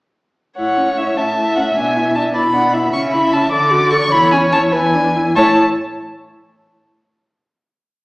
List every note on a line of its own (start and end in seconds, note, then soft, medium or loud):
0.57 1.10 A2 soft
0.57 0.79 E4 soft
0.57 1.18 C#5 medium
0.57 0.99 F#5 medium
0.77 1.00 C#4 soft
0.97 1.19 E4 soft
0.97 1.19 E5 medium
1.17 1.69 A2 medium
1.17 1.36 C#4 soft
1.17 2.33 E5 medium
1.17 1.55 A5 medium
1.36 1.59 E4 soft
1.56 1.77 C#4 soft
1.56 1.64 F#5 medium
1.76 2.28 B2 medium
1.76 1.97 D4 soft
1.76 2.14 G#5 medium
1.96 2.17 E4 soft
2.15 2.36 D4 soft
2.15 2.23 A5 medium
2.34 2.86 B2 medium
2.34 2.53 E4 soft
2.34 2.42 D5 medium
2.34 2.92 B5 medium
2.54 2.75 D4 soft
2.54 2.75 F#5 medium
2.73 2.92 E4 medium
2.73 3.52 E5 medium
2.93 3.45 C#3 medium
2.93 3.15 C#4 medium
2.93 3.01 C#6 medium
3.12 3.35 E4 soft
3.12 3.34 B5 medium
3.33 3.51 C#4 medium
3.33 3.51 A5 medium
3.51 4.04 D3 medium
3.51 3.73 A4 medium
3.51 4.11 D5 medium
3.51 3.92 D6 medium
3.71 3.94 F#4 medium
3.91 4.12 A4 medium
3.91 4.13 C#6 loud
4.12 4.66 E2 medium
4.12 4.34 E4 medium
4.12 4.74 C#5 medium
4.12 4.31 B5 loud
4.32 4.54 C#4 medium
4.32 4.40 G#5 medium
4.52 4.73 E4 medium
4.52 4.60 A5 medium
4.72 5.27 E2 medium
4.72 4.96 E4 medium
4.72 5.04 B4 medium
4.72 5.34 G#5 medium
4.94 5.17 D4 medium
5.16 5.36 E4 medium
5.35 5.58 A2 medium
5.35 5.59 E4 medium
5.35 5.58 C#5 medium
5.35 5.58 A5 medium